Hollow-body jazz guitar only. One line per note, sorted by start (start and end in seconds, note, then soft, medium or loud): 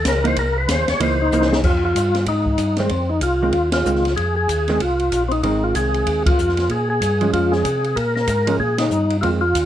0.24 0.36 E3 medium
0.24 0.36 A#3 medium
0.24 0.36 D#4 medium
1.00 1.18 E3 medium
1.00 1.18 A#3 medium
1.00 1.18 D#4 medium
1.33 1.50 E3 medium
1.33 1.50 A#3 medium
1.33 1.50 D#4 medium
2.79 2.90 D#3 medium
2.79 2.90 G#3 medium
2.79 2.90 C4 medium
3.43 3.53 D#3 medium
3.43 3.53 G#3 medium
3.43 3.53 C4 medium
3.86 4.03 D#3 soft
3.86 4.03 G#3 medium
3.86 4.04 C4 medium
4.69 4.80 D#3 medium
4.69 4.80 G#3 medium
4.69 4.80 C4 medium
5.44 6.31 D#3 medium
5.44 6.32 G#3 medium
5.44 6.32 C4 medium
7.21 7.63 F3 medium
7.21 7.63 G#3 medium
7.21 7.63 C#4 medium
8.47 8.58 F3 medium
8.47 8.59 G#3 medium
8.47 8.59 C#4 medium
9.23 9.40 D#3 soft
9.23 9.41 G#3 medium
9.23 9.41 C4 medium